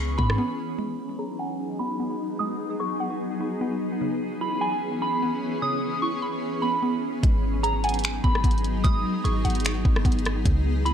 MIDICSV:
0, 0, Header, 1, 6, 480
1, 0, Start_track
1, 0, Key_signature, 5, "minor"
1, 0, Tempo, 402685
1, 943, Time_signature, 4, 2, 24, 8
1, 13036, End_track
2, 0, Start_track
2, 0, Title_t, "Synth bell"
2, 0, Program_c, 0, 98
2, 0, Note_on_c, 0, 85, 81
2, 178, Note_off_c, 0, 85, 0
2, 211, Note_on_c, 0, 83, 83
2, 893, Note_off_c, 0, 83, 0
2, 1418, Note_on_c, 0, 82, 78
2, 1648, Note_off_c, 0, 82, 0
2, 1663, Note_on_c, 0, 80, 77
2, 2114, Note_off_c, 0, 80, 0
2, 2138, Note_on_c, 0, 83, 84
2, 2817, Note_off_c, 0, 83, 0
2, 2852, Note_on_c, 0, 87, 95
2, 3308, Note_off_c, 0, 87, 0
2, 3335, Note_on_c, 0, 85, 72
2, 3790, Note_off_c, 0, 85, 0
2, 5259, Note_on_c, 0, 83, 85
2, 5489, Note_off_c, 0, 83, 0
2, 5496, Note_on_c, 0, 80, 78
2, 5950, Note_off_c, 0, 80, 0
2, 5984, Note_on_c, 0, 83, 75
2, 6660, Note_off_c, 0, 83, 0
2, 6702, Note_on_c, 0, 87, 99
2, 7153, Note_off_c, 0, 87, 0
2, 7177, Note_on_c, 0, 85, 79
2, 7856, Note_off_c, 0, 85, 0
2, 7892, Note_on_c, 0, 83, 80
2, 8574, Note_off_c, 0, 83, 0
2, 9099, Note_on_c, 0, 82, 89
2, 9328, Note_off_c, 0, 82, 0
2, 9345, Note_on_c, 0, 80, 80
2, 9795, Note_off_c, 0, 80, 0
2, 9820, Note_on_c, 0, 83, 91
2, 10498, Note_off_c, 0, 83, 0
2, 10534, Note_on_c, 0, 87, 104
2, 10989, Note_off_c, 0, 87, 0
2, 11018, Note_on_c, 0, 85, 73
2, 11471, Note_off_c, 0, 85, 0
2, 12939, Note_on_c, 0, 83, 86
2, 13036, Note_off_c, 0, 83, 0
2, 13036, End_track
3, 0, Start_track
3, 0, Title_t, "Ambient pad"
3, 0, Program_c, 1, 92
3, 0, Note_on_c, 1, 52, 80
3, 0, Note_on_c, 1, 59, 73
3, 0, Note_on_c, 1, 61, 73
3, 0, Note_on_c, 1, 68, 91
3, 895, Note_off_c, 1, 68, 0
3, 903, Note_off_c, 1, 52, 0
3, 903, Note_off_c, 1, 61, 0
3, 904, Note_off_c, 1, 59, 0
3, 940, Note_on_c, 1, 54, 81
3, 940, Note_on_c, 1, 59, 73
3, 941, Note_on_c, 1, 63, 71
3, 941, Note_on_c, 1, 68, 88
3, 4743, Note_off_c, 1, 54, 0
3, 4743, Note_off_c, 1, 63, 0
3, 4780, Note_on_c, 1, 61, 70
3, 4782, Note_on_c, 1, 52, 78
3, 8574, Note_off_c, 1, 59, 0
3, 8574, Note_off_c, 1, 68, 0
3, 8583, Note_off_c, 1, 61, 0
3, 8584, Note_off_c, 1, 52, 0
3, 8623, Note_on_c, 1, 63, 72
3, 8623, Note_on_c, 1, 68, 88
3, 8624, Note_on_c, 1, 54, 80
3, 8624, Note_on_c, 1, 59, 75
3, 12424, Note_off_c, 1, 63, 0
3, 12425, Note_off_c, 1, 54, 0
3, 12461, Note_on_c, 1, 52, 80
3, 12461, Note_on_c, 1, 61, 78
3, 13036, Note_off_c, 1, 52, 0
3, 13036, Note_off_c, 1, 59, 0
3, 13036, Note_off_c, 1, 61, 0
3, 13036, Note_off_c, 1, 68, 0
3, 13036, End_track
4, 0, Start_track
4, 0, Title_t, "Synth pluck"
4, 0, Program_c, 2, 84
4, 0, Note_on_c, 2, 49, 92
4, 0, Note_on_c, 2, 64, 79
4, 0, Note_on_c, 2, 83, 112
4, 221, Note_on_c, 2, 59, 83
4, 441, Note_off_c, 2, 59, 0
4, 456, Note_on_c, 2, 59, 93
4, 461, Note_off_c, 2, 49, 0
4, 936, Note_on_c, 2, 56, 94
4, 939, Note_off_c, 2, 59, 0
4, 940, Note_off_c, 2, 83, 0
4, 941, Note_off_c, 2, 64, 0
4, 1417, Note_on_c, 2, 68, 80
4, 1660, Note_on_c, 2, 78, 99
4, 2143, Note_on_c, 2, 59, 76
4, 2366, Note_off_c, 2, 59, 0
4, 2379, Note_off_c, 2, 56, 0
4, 2380, Note_on_c, 2, 59, 92
4, 2860, Note_off_c, 2, 68, 0
4, 2863, Note_on_c, 2, 56, 90
4, 3101, Note_off_c, 2, 78, 0
4, 3340, Note_on_c, 2, 68, 78
4, 3577, Note_on_c, 2, 78, 96
4, 3821, Note_off_c, 2, 59, 0
4, 4058, Note_on_c, 2, 59, 78
4, 4289, Note_off_c, 2, 59, 0
4, 4303, Note_off_c, 2, 56, 0
4, 4303, Note_on_c, 2, 59, 93
4, 4780, Note_off_c, 2, 78, 0
4, 4781, Note_off_c, 2, 68, 0
4, 4783, Note_off_c, 2, 59, 0
4, 4783, Note_on_c, 2, 49, 88
4, 5258, Note_on_c, 2, 64, 77
4, 5502, Note_on_c, 2, 83, 97
4, 5980, Note_on_c, 2, 59, 71
4, 6214, Note_off_c, 2, 59, 0
4, 6223, Note_off_c, 2, 49, 0
4, 6229, Note_on_c, 2, 59, 85
4, 6700, Note_off_c, 2, 64, 0
4, 6702, Note_on_c, 2, 49, 86
4, 6942, Note_off_c, 2, 83, 0
4, 7180, Note_on_c, 2, 64, 76
4, 7418, Note_on_c, 2, 83, 105
4, 7666, Note_off_c, 2, 59, 0
4, 7902, Note_on_c, 2, 59, 80
4, 8120, Note_off_c, 2, 59, 0
4, 8134, Note_on_c, 2, 59, 91
4, 8142, Note_off_c, 2, 49, 0
4, 8617, Note_on_c, 2, 56, 95
4, 8618, Note_off_c, 2, 59, 0
4, 8620, Note_off_c, 2, 83, 0
4, 8621, Note_off_c, 2, 64, 0
4, 9098, Note_on_c, 2, 68, 80
4, 9342, Note_on_c, 2, 78, 102
4, 9824, Note_on_c, 2, 59, 80
4, 10049, Note_off_c, 2, 59, 0
4, 10060, Note_off_c, 2, 56, 0
4, 10064, Note_on_c, 2, 59, 94
4, 10540, Note_off_c, 2, 68, 0
4, 10543, Note_on_c, 2, 56, 91
4, 10782, Note_off_c, 2, 78, 0
4, 11024, Note_on_c, 2, 68, 82
4, 11261, Note_on_c, 2, 78, 96
4, 11503, Note_off_c, 2, 59, 0
4, 11739, Note_on_c, 2, 59, 80
4, 11972, Note_off_c, 2, 59, 0
4, 11983, Note_off_c, 2, 56, 0
4, 11986, Note_on_c, 2, 59, 96
4, 12461, Note_off_c, 2, 78, 0
4, 12463, Note_off_c, 2, 68, 0
4, 12464, Note_off_c, 2, 59, 0
4, 12467, Note_on_c, 2, 49, 91
4, 12938, Note_on_c, 2, 64, 82
4, 13036, Note_off_c, 2, 49, 0
4, 13036, Note_off_c, 2, 64, 0
4, 13036, End_track
5, 0, Start_track
5, 0, Title_t, "808-style bass"
5, 0, Program_c, 3, 38
5, 0, Note_on_c, 3, 37, 108
5, 203, Note_off_c, 3, 37, 0
5, 221, Note_on_c, 3, 44, 102
5, 452, Note_off_c, 3, 44, 0
5, 8623, Note_on_c, 3, 32, 118
5, 9775, Note_off_c, 3, 32, 0
5, 9822, Note_on_c, 3, 32, 106
5, 10053, Note_off_c, 3, 32, 0
5, 10059, Note_on_c, 3, 32, 110
5, 10521, Note_off_c, 3, 32, 0
5, 10543, Note_on_c, 3, 32, 115
5, 10773, Note_off_c, 3, 32, 0
5, 11022, Note_on_c, 3, 32, 110
5, 11253, Note_off_c, 3, 32, 0
5, 11263, Note_on_c, 3, 32, 105
5, 11723, Note_off_c, 3, 32, 0
5, 11742, Note_on_c, 3, 32, 109
5, 11973, Note_off_c, 3, 32, 0
5, 11979, Note_on_c, 3, 32, 114
5, 12441, Note_off_c, 3, 32, 0
5, 12463, Note_on_c, 3, 37, 120
5, 13036, Note_off_c, 3, 37, 0
5, 13036, End_track
6, 0, Start_track
6, 0, Title_t, "Drums"
6, 222, Note_on_c, 9, 36, 100
6, 341, Note_off_c, 9, 36, 0
6, 354, Note_on_c, 9, 37, 96
6, 473, Note_off_c, 9, 37, 0
6, 8623, Note_on_c, 9, 36, 123
6, 8623, Note_on_c, 9, 42, 89
6, 8742, Note_off_c, 9, 42, 0
6, 8743, Note_off_c, 9, 36, 0
6, 9106, Note_on_c, 9, 42, 73
6, 9225, Note_off_c, 9, 42, 0
6, 9343, Note_on_c, 9, 42, 63
6, 9404, Note_off_c, 9, 42, 0
6, 9404, Note_on_c, 9, 42, 65
6, 9463, Note_off_c, 9, 42, 0
6, 9463, Note_on_c, 9, 42, 63
6, 9523, Note_off_c, 9, 42, 0
6, 9523, Note_on_c, 9, 42, 61
6, 9580, Note_off_c, 9, 42, 0
6, 9580, Note_on_c, 9, 42, 69
6, 9593, Note_on_c, 9, 26, 112
6, 9699, Note_off_c, 9, 42, 0
6, 9713, Note_off_c, 9, 26, 0
6, 9823, Note_on_c, 9, 36, 100
6, 9942, Note_off_c, 9, 36, 0
6, 9956, Note_on_c, 9, 37, 93
6, 10060, Note_on_c, 9, 36, 90
6, 10062, Note_on_c, 9, 42, 72
6, 10075, Note_off_c, 9, 37, 0
6, 10143, Note_off_c, 9, 42, 0
6, 10143, Note_on_c, 9, 42, 58
6, 10179, Note_off_c, 9, 36, 0
6, 10224, Note_off_c, 9, 42, 0
6, 10224, Note_on_c, 9, 42, 43
6, 10304, Note_off_c, 9, 42, 0
6, 10304, Note_on_c, 9, 42, 76
6, 10423, Note_off_c, 9, 42, 0
6, 10543, Note_on_c, 9, 36, 123
6, 10543, Note_on_c, 9, 42, 88
6, 10662, Note_off_c, 9, 36, 0
6, 10662, Note_off_c, 9, 42, 0
6, 11026, Note_on_c, 9, 42, 73
6, 11145, Note_off_c, 9, 42, 0
6, 11263, Note_on_c, 9, 42, 61
6, 11323, Note_off_c, 9, 42, 0
6, 11323, Note_on_c, 9, 42, 64
6, 11383, Note_off_c, 9, 42, 0
6, 11383, Note_on_c, 9, 42, 61
6, 11443, Note_off_c, 9, 42, 0
6, 11443, Note_on_c, 9, 42, 63
6, 11499, Note_off_c, 9, 42, 0
6, 11499, Note_on_c, 9, 42, 74
6, 11513, Note_on_c, 9, 26, 122
6, 11618, Note_off_c, 9, 42, 0
6, 11632, Note_off_c, 9, 26, 0
6, 11742, Note_on_c, 9, 36, 105
6, 11862, Note_off_c, 9, 36, 0
6, 11875, Note_on_c, 9, 37, 98
6, 11979, Note_on_c, 9, 36, 94
6, 11982, Note_on_c, 9, 42, 74
6, 11994, Note_off_c, 9, 37, 0
6, 12062, Note_off_c, 9, 42, 0
6, 12062, Note_on_c, 9, 42, 60
6, 12098, Note_off_c, 9, 36, 0
6, 12142, Note_off_c, 9, 42, 0
6, 12142, Note_on_c, 9, 42, 43
6, 12223, Note_off_c, 9, 42, 0
6, 12223, Note_on_c, 9, 42, 74
6, 12234, Note_on_c, 9, 37, 99
6, 12343, Note_off_c, 9, 42, 0
6, 12353, Note_off_c, 9, 37, 0
6, 12463, Note_on_c, 9, 36, 123
6, 12463, Note_on_c, 9, 42, 92
6, 12582, Note_off_c, 9, 36, 0
6, 12582, Note_off_c, 9, 42, 0
6, 12945, Note_on_c, 9, 42, 70
6, 13036, Note_off_c, 9, 42, 0
6, 13036, End_track
0, 0, End_of_file